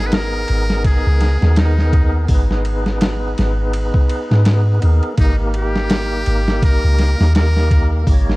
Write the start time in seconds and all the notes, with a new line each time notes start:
Already playing: G#1 B3 D#4 G#4 A#4
0.06 B4
0.12 A#4, snare, ride
0.48 G#1, ride
0.70 snare
0.84 G#4, kick, ride
1.07 C#2
1.21 snare, ride
1.37 B3 D#4
1.42 D#2 G#4, snare
1.47 A#4
1.56 D#4, snare, ride
1.78 snare
1.93 kick, ride
2.25 B3 D#4, open hi-hat
2.29 G#1 G#4, kick
2.34 B4
2.51 snare
2.65 ride
2.86 snare
3.01 snare, ride
3.38 G#1, snare, ride
3.73 ride
3.94 kick
4.10 ride
4.31 G#2, snare
4.45 snare, ride
4.80 D#2 B3 D#4 G#4, ride
4.85 A#4
5.03 ride
5.14 A#3 D#4, kick, ride
5.18 G#1 D#4 G4
5.24 A#4
5.54 G4, ride
5.76 snare
5.90 snare, ride
6.26 G#1, ride
6.48 snare
6.62 A#4, kick, ride
6.84 C#2
6.98 snare, ride
7.15 A#3 D#4
7.20 D#2 G4 A#4, snare
7.35 A#4, snare, ride
7.57 snare
7.71 kick, ride
8.03 A#3 D#4, kick, open hi-hat
8.08 G#1 G4
8.13 C#5
8.29 snare